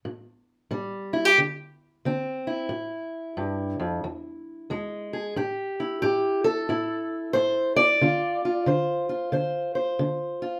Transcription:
steel-string acoustic guitar
0.05 A2
0.71 A2 G3
1.13 E4
1.25 G4
1.38 D3
2.05 D3 C4
2.47 E4
2.69 A2
3.37 G2
3.80 F2
4.04 E2
4.70 E2 G#3
5.13 G#4
5.36 A2 G4
5.80 E4
6.02 A2 G4
6.44 A4
6.69 A2 E4
7.33 A2 C5
7.76 D5
8.01 D3 F4
8.45 F4
8.66 D3 C5
9.09 F4
9.32 D3 C5
9.75 C5
9.99 D3
10.42 F4

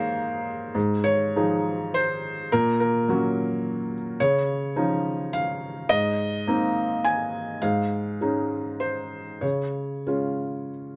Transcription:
felt piano
Already playing: G#2 A#3 D#4 G#4 A#4 C5 C#5
0.75 G#2
1.04 C#5
1.36 F3 D#4 G#4
1.94 C5
2.52 A#2 A#4
2.80 A#4
3.08 F#3 C#4 F#4
4.20 C#3 C#5
4.76 F3 C#4 D#4
5.33 F5
5.89 G#2 D#5
6.47 A#3 C4 D#4
7.04 G#5
7.62 G#2 F5
8.21 G#3 C#4 D#4
8.80 C5
9.41 C#3 C#5
10.07 G#3 C#4 F4

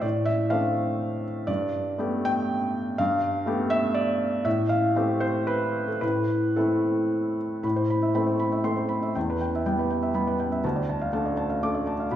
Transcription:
felt piano
0.02 A2 D5
0.25 E5
0.50 A3 C4 D4 F5
1.47 G2 D5
1.98 A3 B3 G4
2.25 G5
2.98 G2 F5
3.46 A3 B3 G4
3.70 E5
3.94 D5
4.45 A2 E5
4.69 F5
4.96 A3 C4 G4
5.20 C5
5.47 B4
5.88 A4
6.01 A2 B4
6.56 A3 C4 E4 A4
7.63 A2 B5
7.76 C5
7.90 B5
8.02 E5
8.15 A3 C4 B5
8.26 C5
8.40 B5
8.52 E5
8.64 A3 C4 C6
8.76 C5
8.89 B5
9.02 E5
9.15 E2 G5
9.30 B4
9.41 G5
9.55 E5
9.66 G3 B3 G5
9.79 B4
9.90 G5
10.03 E5
10.14 G3 B3 B5
10.27 B4
10.40 G5
10.52 E5
10.64 D2 A5
10.76 D5
10.89 A5
11.01 F5
11.13 A3 D4 A5
11.26 D5
11.37 A5
11.49 F5
11.63 A3 D4 D6
11.75 D5
11.87 A5
12.00 F5
12.11 B2 B5

